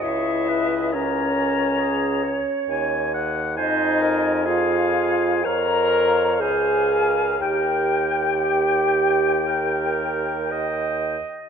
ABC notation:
X:1
M:4/4
L:1/8
Q:1/4=62
K:C#dor
V:1 name="Oboe"
d2 a3 z g f | [K:Ebmix] a2 a2 f2 f2 | g6- g z |]
V:2 name="Flute"
e2 c4- c z | [K:Ebmix] e2 f2 b2 a2 | g6- g z |]
V:3 name="Clarinet"
c B A2 G c2 z | [K:Ebmix] c B A2 d2 c B | B2 G2 B2 e2 |]
V:4 name="French horn"
E2 C4- C z | [K:Ebmix] E2 F2 B2 A2 | G6- G z |]
V:5 name="Bassoon" clef=bass
C,,4- C,, z D,,2 | [K:Ebmix] F,,4 F,,2 D,,2 | E,,6- E,, z |]